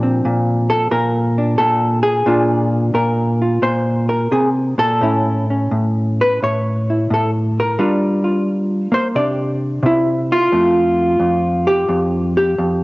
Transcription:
Already playing: A#2 F3 D4 G4
0.03 C4
0.25 A#2
0.70 A4
0.91 A#2 A#4
1.38 D4
1.58 A#2 A4
2.03 G#4
2.26 A#2 A#3 D4 F4
2.94 A#2 A#4
3.42 F4
3.62 A#2 C5
4.09 A#4
4.32 C3 G#4
4.78 A#2 A4
5.01 A2 C#4 E4
5.50 C#4
5.71 A2
6.21 B4
6.42 A2 C#5
6.90 E4
7.10 A2 A4
7.60 A#4
7.79 G3 D4 F4
8.24 F4
8.92 A#3 C5
9.15 C3 D4 G4 D5
9.83 C3 E4
10.32 F4
10.52 F2 A3
11.20 F2
11.67 G4
11.89 F2
12.37 G4
12.58 F2

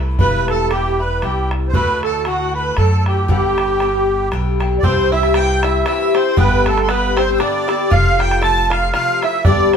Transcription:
Already playing: C2 A3 E4
0.00 E3
0.19 E1 G2 G3 B3 E4 B4 B5, bodhran
0.48 A4 A5, bodhran
0.71 G2 G3 B3 E4 G4 G5, bodhran
0.99 G3 B3 E4 B4 B5
1.22 C2 G2 G3 B3 E4 G4 G5, bodhran
1.51 bodhran
1.68 C5
1.74 D2 A2 D3 A3 F#4 B4 B5, bodhran
2.03 A4 A5, bodhran
2.25 A2 D3 A3 F#4 F#5, bodhran
2.54 B4 B5
2.77 F#2 A2 D3 A3 F#4 A4 A5, bodhran
3.06 G4 G5, bodhran
3.28 G1 G2 D3 B3 G4 F#5, bodhran
3.44 G5
3.58 bodhran
3.80 G2 D3 B3 G4, bodhran
4.31 B1 G2 D3 B3 G4, bodhran
4.60 D3 B3 G4, bodhran
4.79 D5
4.83 C2 G2 E3 C4 G4 C5 C6, bodhran
5.12 E4 E5 E6
5.23 bodhran
5.34 G2 E3 C4 G4 G5 G6, bodhran
5.63 E4 E5 E6, bodhran
5.86 G2 E3 C4 E4 G4 E5 E6, bodhran
6.14 E3 C4 G4 C5 C6, bodhran
6.37 G1 G2 D3 B3 G4 B4 B5, bodhran
6.65 A3 A4 A5, bodhran
6.78 bodhran
6.82 C6
6.88 G2 D3 B3 G4 B4 B5, bodhran
7.16 D3 B3 C4 G4 C5 C6, bodhran
7.33 E6
7.38 G2 D3 B3 D4 G4 D5 D6, bodhran
7.68 D3 B3 E4 G4, bodhran
7.90 F1 C3 F3 A3 F4 F5 F6, bodhran
8.19 G4 G5 G6, bodhran
8.31 bodhran
8.42 C3 F3 A3 F4 A4 A5 A6, bodhran
8.70 F4 F5 F6, bodhran
8.92 C3 F3 A3 F4 F5 F6, bodhran
9.21 F3 A3 E4 F4 E5 E6, bodhran
9.44 G1 G2 D3 B3 D4 G4 D5 D6, bodhran
9.73 C6, bodhran

